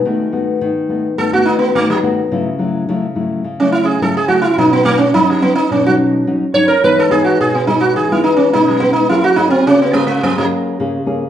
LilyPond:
<<
  \new Staff \with { instrumentName = "Sitar" } { \time 4/4 \key b \mixolydian \tempo 4 = 106 r2 a'16 fis'16 dis'16 b16 a16 fis16 r8 | r2 r16 cis'16 e'16 gis'16 a'16 gis'16 fis'16 e'16 | dis'16 b16 a16 cis'16 dis'16 fis16 b16 dis'16 cis'16 fis'16 r4 cis''16 ais'16 | b'16 a'16 gis'16 fis'16 gis'16 b16 dis'16 fis'16 gis'16 e'16 dis'16 cis'16 dis'16 fis16 b16 dis'16 |
e'16 fis'16 dis'16 c'16 cis'16 b16 ais16 gis16 ais16 fis16 r4. | }
  \new Staff \with { instrumentName = "Nylon-string guitar" } { \time 4/4 \key b \mixolydian << { <a b fis'>8 <a b fis'>8. r16 <a b fis'>16 r16 <a b fis'>16 <a b fis'>8. <a b fis'>16 r16 <a b fis'>16 r16 | <fis a e'>16 r16 <fis a e'>8 <fis a e'>16 r16 <fis a e'>8 r16 <fis a e'>8. <fis a e'>16 r16 <fis a e'>16 r16 | <fis cis' dis'>8 <fis cis' dis'>16 r16 <fis cis' dis'>8 <fis cis' dis'>16 r16 <fis cis' dis'>16 <fis cis' dis'>8. <fis cis' dis'>16 r16 <fis cis' dis'>16 r16 | <gis b dis'>8 <gis b dis'>8. r16 <gis b dis'>8. <gis b dis'>8. <gis b dis'>8 <gis b dis'>16 r16 |
<ais cis' gis'>16 r16 <ais cis' gis'>16 r16 <ais cis' gis'>16 r16 <ais cis' gis'>8 <ais cis' gis'>16 <ais cis' gis'>8. <ais cis' gis'>16 r16 <ais cis' gis'>16 r16 | } \\ { dis4 dis4 dis4 dis4 | cis4 cis4 cis4 cis4 | b,4 fis4 b,4 fis4 | e4 b,4 e4 b,4 |
fis4 cis4 fis4 cis4 | } >> }
>>